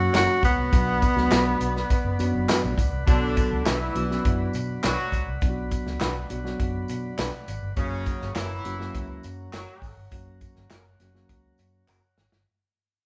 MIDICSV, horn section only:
0, 0, Header, 1, 2, 480
1, 0, Start_track
1, 0, Key_signature, 2, "minor"
1, 0, Tempo, 587084
1, 596, Time_signature, 4, 2, 24, 8
1, 10674, End_track
2, 0, Start_track
2, 0, Title_t, "Horn section"
2, 0, Program_c, 0, 61
2, 2509, Note_on_c, 0, 50, 105
2, 2509, Note_on_c, 0, 62, 112
2, 2961, Note_off_c, 0, 50, 0
2, 2961, Note_off_c, 0, 62, 0
2, 2992, Note_on_c, 0, 64, 104
2, 2993, Note_on_c, 0, 52, 99
2, 3678, Note_off_c, 0, 52, 0
2, 3678, Note_off_c, 0, 64, 0
2, 3951, Note_on_c, 0, 66, 118
2, 3956, Note_on_c, 0, 54, 110
2, 4289, Note_off_c, 0, 66, 0
2, 4291, Note_off_c, 0, 54, 0
2, 6351, Note_on_c, 0, 49, 107
2, 6351, Note_on_c, 0, 61, 124
2, 6801, Note_off_c, 0, 49, 0
2, 6801, Note_off_c, 0, 61, 0
2, 6830, Note_on_c, 0, 64, 114
2, 6833, Note_on_c, 0, 52, 96
2, 7517, Note_off_c, 0, 64, 0
2, 7519, Note_off_c, 0, 52, 0
2, 7790, Note_on_c, 0, 54, 102
2, 7791, Note_on_c, 0, 66, 111
2, 8129, Note_off_c, 0, 54, 0
2, 8129, Note_off_c, 0, 66, 0
2, 10674, End_track
0, 0, End_of_file